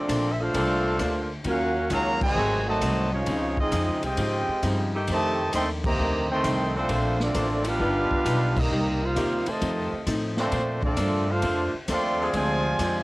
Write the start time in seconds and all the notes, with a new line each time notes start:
Already playing: A#2 D3 F3 A3 C4 D4 A4 D5
0.00 F4 A4
0.09 A#1 A#3 D4 A4 C5, kick, hi-hat pedal, ride
0.33 E5
0.40 A3 D4 F4 A4 C5 F5
0.54 C2 A#2 D3 A#3 C4 D4 A4 C5, kick, ride
0.99 D2 A#3 D4 A4 C5, kick, hi-hat pedal, ride
1.44 D#2 D#3 F#3 A#3 C#4 F4 F#4, kick, ride
1.48 C#4 A#4 F5 F#5
1.90 C#2 C#3 D#3 F#3 A#3 C#4 F4 F#4 C#5 F5 A#5, kick, hi-hat pedal, ride
2.21 C3 D#3 G#3 F#4 C5 D#5 G#5, kick, crash
2.35 G#1 G#2 F#3 A3 C4 G#4
2.65 D#3 F#3 A3 F#4 C5 D#5 A5
2.81 C2 G#2 F#3 A3 C4, kick, hi-hat pedal, ride
3.13 F3 G#3 C#4 D#4 F4 C#5
3.26 C#2 C#3 F3 C4 D#4, kick, ride
3.57 G#3 C4 D#4 F4 G#4 D#5, kick
3.72 F2 C#3 F3 C4 D#4, kick, hi-hat pedal, ride
3.87 C#2
4.03 C2 G#3 C4 F4 G4 C5 D#5 G5, ride
4.17 G#2 C#3 F3 C4 D#4, kick, ride
4.48 muted upright bass stroke
4.63 G2 C#3 F3 C4 D#4, kick, hi-hat pedal, ride
4.94 D#3 A3 D#4 G4
5.07 F2 C3 D#3 A3 D4 G4 C5 D#5 A5, kick, ride
5.53 D#2 F2 D#3 A3 C4 D4 A4 D#5 G5 C6, kick, hi-hat pedal, ride
5.84 C3 D#3 A#3 G4 C5 D#5 A#5, kick, crash
5.98 D2 F2 D#3 A3 D4
6.31 D#3 A3 C4 A4 D#5 G5 C6
6.43 C2 F2 D#3 A3 D4, kick, hi-hat pedal, ride
6.74 A#2 D3 F3 A3 C4 D4 F4 A4 C5
6.89 A#1 A#3 D4 A4 C5, kick, ride
7.20 F3 A3 C4 D4 F4 A4 D5, snare
7.34 A1 A#3 D4 A4 C5, kick, hi-hat pedal, ride
7.64 B3 D4 F4, ride
7.69 G4 B4 F5
7.79 G1 D#3 G3 B3 D#4 F4 B4, kick
8.11 muted upright bass stroke, kick
8.24 B1 G3 D#4 F4 B4, kick, hi-hat pedal, ride
8.56 G3 A#3 C4 D#4 G4 A#4 D#5, kick, crash
8.71 C2 C3 A#3 D#4 G4
9.03 G3 A#3 D#4 F4 A#4 C5 F5
9.16 D#2 C3 A#3 D#4 G4, kick, hi-hat pedal, ride
9.46 C3 D#3 A3 F4 C5 D#5 A5, muted upright bass stroke, ride
9.61 F2 F3 C4 D#4 A4, kick, ride
9.92 muted upright bass stroke
10.07 A2 F3 C4 D#4 A4, kick, hi-hat pedal, ride
10.36 A#2 D3 F3 A3 C4 D4 F4 A4 C5, snare
10.52 A#2 A#3 D4 A4 C5, kick, ride
10.83 F3 A3 C4 D4 F4 A4 D5, kick
10.97 G2 A#3 D4 A4 C5, kick, hi-hat pedal, ride
11.28 A3 D4 F4 A4 C5 F5
11.42 F2 A#3 D4 A4 C5, kick, ride
11.73 muted upright bass stroke
11.88 D#2 F3 A3 A#3 C4 D4 A4 C5 D5 F5 C6, kick, hi-hat pedal, ride
12.19 F3 C4 D4 G#4
12.33 D2 C3 D3 F3 G#3 C4 F4 C5 D5 G#5, kick, ride
12.79 F2 D3 G#3 C4 F4, kick, hi-hat pedal, ride